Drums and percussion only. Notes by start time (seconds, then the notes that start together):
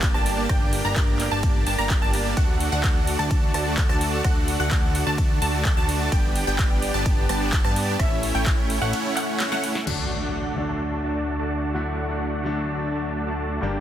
0.02 kick, clap, ride
0.14 cross-stick
0.26 open hi-hat
0.49 kick, cross-stick, ride
0.73 open hi-hat
0.96 kick, clap, ride
1.20 clap, open hi-hat
1.43 kick, ride
1.66 open hi-hat
1.90 kick, clap, ride
2.13 open hi-hat
2.37 kick, ride
2.60 open hi-hat
2.84 kick, clap, ride
3.07 open hi-hat
3.31 kick, ride
3.54 cross-stick, open hi-hat
3.77 kick, clap, ride
3.89 cross-stick
4.01 open hi-hat
4.24 kick, cross-stick, ride
4.48 open hi-hat
4.71 kick, clap, ride
4.95 open hi-hat
5.18 kick, ride
5.42 open hi-hat
5.65 kick, clap, ride
5.89 open hi-hat
6.12 kick, ride
6.36 open hi-hat
6.59 kick, clap, ride
6.82 open hi-hat
7.06 kick, ride
7.29 cross-stick, open hi-hat
7.53 kick, clap, ride
7.65 cross-stick
7.76 open hi-hat
7.99 kick, cross-stick, ride
8.23 open hi-hat
8.46 kick, clap, ride
8.70 open hi-hat
8.93 ride
9.17 clap, open hi-hat
9.40 snare, clap, ride
9.52 snare
9.64 open hi-hat
9.75 snare
9.87 crash